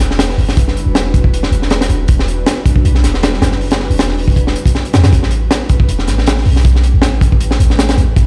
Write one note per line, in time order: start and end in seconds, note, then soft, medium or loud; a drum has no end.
0.00 0.37 E1 loud
0.00 snare soft
0.11 snare soft
0.19 snare loud
0.19 closed hi-hat medium
0.29 snare soft
0.38 0.85 F#1 medium
0.38 open hi-hat medium
0.49 snare soft
0.57 kick loud
0.57 closed hi-hat medium
0.68 snare soft
0.77 closed hi-hat medium
0.86 1.50 E1 medium
0.95 snare loud
0.95 closed hi-hat medium
1.14 kick loud
1.14 closed hi-hat medium
1.24 kick medium
1.34 closed hi-hat medium
1.43 snare soft
1.52 1.88 E1 loud
1.52 closed hi-hat medium
1.62 snare soft
1.70 snare loud
1.70 closed hi-hat medium
1.81 snare medium
1.81 closed hi-hat medium
1.89 2.07 E1 medium
1.89 closed hi-hat medium
2.08 2.45 E1 loud
2.08 kick loud
2.08 closed hi-hat medium
2.19 snare medium
2.28 closed hi-hat medium
2.46 snare loud
2.46 closed hi-hat medium
2.66 kick loud
2.66 closed hi-hat medium
2.76 kick loud
2.85 3.05 B1 medium
2.85 closed hi-hat medium
2.95 snare soft
3.04 3.40 E1 loud
3.04 snare soft
3.04 closed hi-hat medium
3.14 snare soft
3.23 snare loud
3.23 closed hi-hat medium
3.34 snare soft
3.42 3.88 F#1 medium
3.42 snare loud
3.42 closed hi-hat medium
3.52 snare soft
3.61 open hi-hat medium
3.71 snare loud
3.71 closed hi-hat medium
3.80 snare soft
3.90 4.54 E1 medium
3.90 open hi-hat medium
3.99 snare loud
3.99 closed hi-hat medium
4.09 snare soft
4.18 open hi-hat medium
4.28 kick medium
4.36 kick medium
4.36 closed hi-hat medium
4.47 snare medium
4.56 closed hi-hat medium
4.66 kick medium
4.66 closed hi-hat medium
4.75 snare soft
4.85 closed hi-hat medium
4.93 5.03 E2 loud
4.93 snare loud
4.93 closed hi-hat medium
5.04 5.12 E2 loud
5.04 snare loud
5.04 closed hi-hat medium
5.13 5.49 A1 medium
5.13 kick loud
5.13 closed hi-hat medium
5.23 snare soft
5.31 closed hi-hat medium
5.51 snare loud
5.51 closed hi-hat medium
5.69 kick medium
5.69 closed hi-hat medium
5.80 kick medium
5.89 6.09 E1 medium
5.89 closed hi-hat medium
5.99 snare soft
6.07 6.44 A1 loud
6.07 snare soft
6.07 closed hi-hat medium
6.18 snare soft
6.26 snare loud
6.26 closed hi-hat medium
6.38 snare soft
6.45 6.92 B1 medium
6.45 open hi-hat medium
6.56 snare soft
6.65 kick loud
6.65 closed hi-hat medium
6.75 snare soft
6.83 closed hi-hat medium
6.94 7.58 A1 medium
7.02 snare loud
7.02 closed hi-hat medium
7.21 kick loud
7.21 closed hi-hat medium
7.32 kick medium
7.40 closed hi-hat medium
7.51 snare medium
7.60 7.96 A1 loud
7.60 closed hi-hat medium
7.70 snare soft
7.79 snare loud
7.79 closed hi-hat medium
7.89 snare loud
7.89 closed hi-hat medium
7.97 8.15 A1 medium
7.97 closed hi-hat medium
8.16 8.27 A1 medium
8.16 kick loud
8.16 closed hi-hat medium